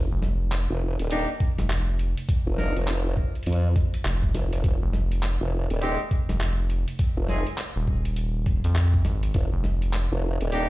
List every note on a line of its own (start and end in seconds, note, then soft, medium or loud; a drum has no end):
0.12 0.67 F1 loud
0.22 snare soft
0.52 clap loud
0.52 closed hi-hat medium
0.70 0.97 F1 medium
0.99 1.26 D#1 loud
0.99 closed hi-hat medium
1.11 1.29 A#3 loud
1.11 1.29 D4 medium
1.11 1.29 D#4 medium
1.11 1.29 G4 loud
1.11 closed hi-hat medium
1.40 kick loud
1.40 closed hi-hat soft
1.58 2.15 F1 medium
1.58 snare soft
1.58 closed hi-hat medium
1.70 clap loud
1.70 closed hi-hat medium
1.99 closed hi-hat medium
2.17 closed hi-hat medium
2.29 kick loud
2.29 closed hi-hat medium
2.47 2.73 F1 loud
2.58 2.76 A#3 medium
2.58 2.76 D4 medium
2.58 2.76 D#4 medium
2.58 2.76 A#4 medium
2.58 snare soft
2.76 3.15 F1 loud
2.76 closed hi-hat medium
2.88 clap loud
2.88 closed hi-hat medium
3.17 kick medium
3.35 closed hi-hat soft
3.43 closed hi-hat soft
3.46 3.74 F2 loud
3.46 closed hi-hat medium
3.52 closed hi-hat soft
3.76 kick loud
3.76 closed hi-hat soft
3.94 closed hi-hat medium
4.05 4.33 F1 loud
4.05 clap loud
4.05 closed hi-hat medium
4.23 kick medium
4.35 4.62 F1 loud
4.35 snare soft
4.35 closed hi-hat medium
4.53 closed hi-hat medium
4.64 4.79 F1 loud
4.64 kick loud
4.64 closed hi-hat medium
4.82 5.38 F1 loud
4.93 snare soft
5.12 closed hi-hat medium
5.23 clap loud
5.23 closed hi-hat medium
5.41 5.68 F1 loud
5.70 5.97 D#1 loud
5.70 closed hi-hat medium
5.82 5.99 G#3 loud
5.82 5.99 C4 medium
5.82 5.99 D#4 medium
5.82 5.99 G4 loud
5.82 closed hi-hat medium
6.11 kick loud
6.11 closed hi-hat soft
6.29 6.85 F1 loud
6.29 snare soft
6.29 closed hi-hat soft
6.40 clap loud
6.40 closed hi-hat medium
6.70 closed hi-hat medium
6.88 closed hi-hat medium
6.99 kick loud
6.99 closed hi-hat medium
7.17 7.44 F1 loud
7.28 7.46 G#3 medium
7.28 7.46 C4 medium
7.28 7.46 D#4 medium
7.28 7.46 G#4 medium
7.28 snare soft
7.47 closed hi-hat medium
7.58 clap loud
7.58 closed hi-hat medium
7.76 8.62 D#1 loud
7.87 kick medium
8.05 closed hi-hat medium
8.16 closed hi-hat medium
8.46 kick loud
8.46 closed hi-hat soft
8.64 9.03 F2 medium
8.64 closed hi-hat soft
8.75 clap loud
8.75 closed hi-hat medium
8.94 kick medium
9.05 9.33 G#1 loud
9.05 snare soft
9.05 closed hi-hat soft
9.23 closed hi-hat medium
9.34 9.50 F1 loud
9.34 kick loud
9.34 closed hi-hat medium
9.53 10.09 F1 loud
9.64 snare soft
9.82 closed hi-hat soft
9.93 clap loud
9.93 closed hi-hat medium
10.12 10.38 F1 medium
10.41 10.68 D#1 loud
10.41 closed hi-hat medium
10.52 10.69 A#3 loud
10.52 10.69 D4 medium
10.52 10.69 D#4 medium
10.52 10.69 G4 loud
10.52 closed hi-hat medium